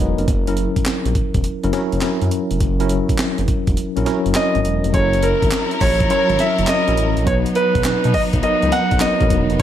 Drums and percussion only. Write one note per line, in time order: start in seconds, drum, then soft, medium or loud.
0.18 closed hi-hat medium
0.28 kick loud
0.28 closed hi-hat medium
0.47 closed hi-hat medium
0.57 closed hi-hat medium
0.76 kick medium
0.76 closed hi-hat soft
0.85 snare loud
0.85 clap medium
0.85 closed hi-hat medium
1.05 closed hi-hat medium
1.15 kick medium
1.15 closed hi-hat medium
1.34 kick medium
1.34 closed hi-hat soft
1.44 closed hi-hat medium
1.64 closed hi-hat soft
1.73 snare medium
1.73 closed hi-hat medium
1.92 closed hi-hat soft
2.01 snare loud
2.01 clap medium
2.01 closed hi-hat medium
2.21 closed hi-hat soft
2.31 closed hi-hat medium
2.51 closed hi-hat medium
2.60 kick loud
2.60 closed hi-hat medium
2.80 closed hi-hat medium
2.89 closed hi-hat medium
3.09 kick medium
3.09 closed hi-hat medium
3.18 snare loud
3.18 clap loud
3.18 closed hi-hat medium
3.38 closed hi-hat medium
3.48 kick loud
3.48 closed hi-hat medium
3.67 kick loud
3.67 closed hi-hat medium
3.77 closed hi-hat medium
3.97 closed hi-hat soft
4.06 snare medium
4.06 closed hi-hat medium
4.26 closed hi-hat soft
4.34 snare loud
4.34 clap medium
4.34 closed hi-hat medium
4.55 closed hi-hat soft
4.65 closed hi-hat medium
4.84 closed hi-hat medium
4.94 kick loud
4.94 closed hi-hat medium
5.13 closed hi-hat medium
5.23 closed hi-hat medium
5.42 kick medium
5.42 closed hi-hat medium
5.51 snare loud
5.51 clap loud
5.51 clap medium
5.51 closed hi-hat medium
5.71 closed hi-hat medium
5.81 kick loud
5.81 clap medium
5.81 open hi-hat medium
6.00 kick loud
6.00 closed hi-hat medium
6.10 closed hi-hat medium
6.30 closed hi-hat soft
6.39 snare medium
6.39 closed hi-hat medium
6.58 closed hi-hat soft
6.67 snare loud
6.67 clap medium
6.67 closed hi-hat medium
6.68 clap medium
6.88 closed hi-hat soft
6.97 closed hi-hat medium
7.17 closed hi-hat medium
7.27 kick loud
7.27 closed hi-hat medium
7.46 closed hi-hat medium
7.55 closed hi-hat medium
7.75 kick medium
7.75 closed hi-hat soft
7.84 snare loud
7.84 clap medium
7.84 closed hi-hat medium
8.04 closed hi-hat medium
8.14 kick medium
8.14 open hi-hat medium
8.33 kick loud
8.33 closed hi-hat medium
8.43 closed hi-hat medium
8.62 closed hi-hat soft
8.72 snare medium
8.72 closed hi-hat medium
8.91 kick loud
8.91 closed hi-hat soft
9.00 snare loud
9.00 clap medium
9.00 closed hi-hat medium
9.20 kick loud
9.20 closed hi-hat soft
9.30 kick medium
9.30 closed hi-hat medium
9.50 closed hi-hat medium